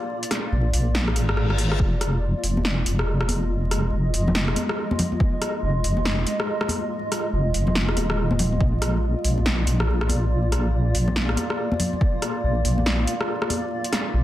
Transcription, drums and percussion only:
0.23 closed hi-hat soft
0.31 cross-stick medium
0.31 snare medium
0.31 closed hi-hat medium
0.73 open hi-hat medium
0.95 snare loud
1.08 cross-stick medium
1.16 closed hi-hat medium
1.29 cross-stick medium
1.37 cross-stick medium
1.50 cross-stick medium
1.58 open hi-hat medium
1.72 cross-stick medium
1.80 kick loud
2.01 cross-stick medium
2.01 closed hi-hat medium
2.44 open hi-hat medium
2.57 high conga medium
2.65 snare loud
2.86 closed hi-hat medium
2.99 cross-stick medium
3.21 cross-stick medium
3.29 open hi-hat medium
3.29 high conga medium
3.71 cross-stick medium
3.71 closed hi-hat medium
4.14 open hi-hat medium
4.27 high conga medium
4.27 low conga medium
4.35 snare loud
4.48 cross-stick medium
4.56 closed hi-hat medium
4.56 high conga medium
4.69 cross-stick medium
4.91 high conga medium
4.99 open hi-hat medium
4.99 low conga medium
5.12 high conga medium
5.20 kick loud
5.42 cross-stick medium
5.42 closed hi-hat medium
5.84 open hi-hat medium
5.97 high conga medium
6.05 snare loud
6.27 closed hi-hat medium
6.40 cross-stick medium
6.61 cross-stick medium
6.69 open hi-hat medium
6.69 high conga medium
7.12 cross-stick medium
7.12 closed hi-hat medium
7.54 open hi-hat medium
7.67 high conga medium
7.67 low conga medium
7.75 snare loud
7.89 cross-stick medium
7.97 closed hi-hat medium
7.97 high conga medium
8.10 cross-stick medium
8.31 high conga loud
8.39 open hi-hat medium
8.39 low conga medium
8.52 high conga medium
8.61 kick loud
8.82 cross-stick medium
8.82 closed hi-hat medium
9.24 open hi-hat medium
9.38 high conga medium
9.46 snare loud
9.67 closed hi-hat medium
9.80 cross-stick medium
10.01 cross-stick medium
10.09 open hi-hat medium
10.09 high conga medium
10.52 cross-stick medium
10.52 closed hi-hat medium
10.95 open hi-hat medium
11.08 high conga medium
11.08 low conga medium
11.16 snare loud
11.29 cross-stick medium
11.37 closed hi-hat medium
11.37 high conga medium
11.50 cross-stick medium
11.72 high conga medium
11.80 open hi-hat loud
11.80 low conga medium
11.93 high conga medium
12.01 kick loud
12.22 cross-stick medium
12.22 closed hi-hat medium
12.65 open hi-hat medium
12.78 high conga medium
12.86 snare loud
13.07 closed hi-hat medium
13.21 cross-stick medium
13.42 cross-stick medium
13.50 open hi-hat medium
13.50 high conga medium
13.84 closed hi-hat soft
13.93 cross-stick medium
13.93 snare medium
13.93 closed hi-hat medium

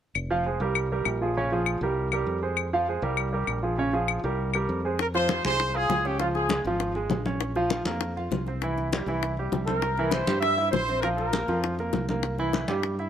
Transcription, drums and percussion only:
0.15 claves medium
0.75 claves medium
1.05 claves medium
1.66 claves medium
2.12 claves medium
2.57 claves medium
3.17 claves medium
3.47 claves medium
4.08 claves medium
4.54 claves medium
4.99 high bongo medium
4.99 high conga soft
5.14 high bongo soft
5.14 high conga soft
5.29 high bongo medium
5.29 high conga medium
5.45 high bongo soft
5.45 high conga medium
5.59 high bongo medium
5.59 high conga soft
5.74 high conga soft
5.90 high bongo soft
5.90 low bongo medium
5.90 high conga medium
6.05 high bongo soft
6.05 high conga soft
6.20 high bongo medium
6.20 high conga soft
6.35 high bongo soft
6.35 high conga soft
6.49 high bongo medium
6.49 high conga loud
6.65 high bongo soft
6.65 high conga soft
6.80 high bongo medium
6.80 high conga soft
6.95 high conga soft
7.10 high bongo soft
7.10 low bongo medium
7.10 high conga medium
7.26 high bongo soft
7.26 high conga medium
7.41 high bongo medium
7.41 high conga soft
7.56 high bongo soft
7.56 high conga soft
7.70 high bongo medium
7.70 high conga medium
7.85 high bongo soft
7.85 high conga medium
8.01 high bongo medium
8.01 high conga soft
8.17 high conga soft
8.32 high bongo soft
8.32 low bongo medium
8.32 high conga medium
8.47 high bongo soft
8.47 high conga soft
8.62 high bongo medium
8.62 high conga soft
8.78 high bongo soft
8.78 high conga soft
8.93 high bongo medium
8.93 high conga loud
9.07 high bongo soft
9.07 high conga soft
9.23 high bongo medium
9.23 high conga soft
9.37 high conga soft
9.52 high bongo soft
9.52 low bongo medium
9.52 high conga medium
9.67 high bongo soft
9.67 high conga medium
9.82 high bongo medium
9.82 high conga soft
9.97 high bongo soft
9.97 high conga soft
10.11 high bongo medium
10.11 high conga medium
10.27 high bongo soft
10.27 high conga medium
10.43 high bongo medium
10.43 high conga soft
10.59 high conga soft
10.73 high bongo soft
10.73 low bongo medium
10.73 high conga medium
10.88 high bongo soft
10.88 high conga soft
11.03 high bongo medium
11.03 high conga soft
11.18 high bongo soft
11.18 high conga soft
11.33 high bongo medium
11.33 high conga medium
11.48 high bongo soft
11.48 high conga soft
11.64 high bongo medium
11.64 high conga soft
11.79 high conga soft
11.93 high bongo soft
11.93 low bongo medium
11.93 high conga medium
12.09 high bongo soft
12.09 high conga medium
12.23 high bongo medium
12.23 high conga soft
12.38 high bongo soft
12.38 high conga soft
12.53 high bongo medium
12.53 high conga loud
12.68 high bongo soft
12.68 high conga medium
12.83 high bongo medium
12.83 high conga soft
12.99 high conga soft

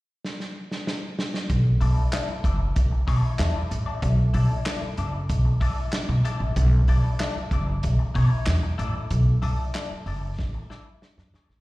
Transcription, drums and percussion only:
0.25 snare medium
0.40 snare soft
0.71 snare medium
0.87 snare loud
1.19 snare loud
1.34 snare medium
1.50 kick loud
1.50 closed hi-hat medium
1.81 open hi-hat medium
2.13 snare loud
2.13 clap loud
2.13 closed hi-hat loud
2.44 kick medium
2.44 closed hi-hat medium
2.76 kick loud
2.76 closed hi-hat medium
3.08 kick loud
3.08 open hi-hat medium
3.39 snare loud
3.39 clap medium
3.39 closed hi-hat medium
3.71 closed hi-hat medium
4.02 kick loud
4.02 closed hi-hat medium
4.34 open hi-hat medium
4.66 snare loud
4.66 clap loud
4.66 closed hi-hat loud
4.97 closed hi-hat medium
5.29 kick loud
5.29 closed hi-hat medium
5.61 kick medium
5.61 open hi-hat medium
5.93 snare loud
5.93 clap medium
5.93 closed hi-hat medium
6.25 closed hi-hat medium
6.56 kick loud
6.56 closed hi-hat medium
6.88 open hi-hat medium
7.20 snare loud
7.20 clap loud
7.20 closed hi-hat medium
7.51 kick medium
7.51 closed hi-hat medium
7.83 kick loud
7.83 closed hi-hat loud
8.15 kick loud
8.15 open hi-hat medium
8.46 snare loud
8.46 clap loud
8.46 closed hi-hat medium
8.79 closed hi-hat medium
9.10 kick loud
9.10 closed hi-hat medium
9.42 open hi-hat medium
9.74 snare loud
9.74 clap loud
9.74 closed hi-hat loud
10.06 open hi-hat medium
10.39 kick loud
10.39 snare medium
10.70 snare medium
11.02 snare medium
11.18 snare medium
11.34 snare loud
11.50 snare medium

